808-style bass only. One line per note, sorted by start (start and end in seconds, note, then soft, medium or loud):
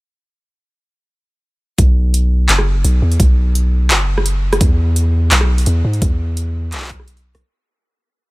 1.78 2.48 B1 loud
2.49 2.83 F#1 medium
2.84 3.01 B1 loud
3.02 3.18 E2 medium
3.20 3.92 B1 loud
3.90 4.60 F#1 medium
4.61 5.30 E2 loud
5.32 5.66 B1 medium
5.67 5.83 E2 loud
5.84 6.01 G#2 medium
6.02 6.74 E2 loud
6.73 7.34 B1 medium
7.35 7.42 B1 loud